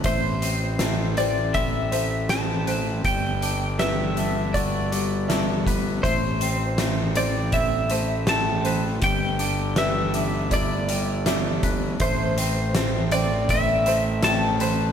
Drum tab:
HH |xxxxxxxx|xxxxxxxx|xxxxxxxx|xxxxxxxx|
SD |--o---o-|--o---o-|--o---o-|--o---o-|
BD |o---o---|o---o--o|o---o---|o---o--o|

HH |xxxxxxxx|
SD |--o---o-|
BD |o---o---|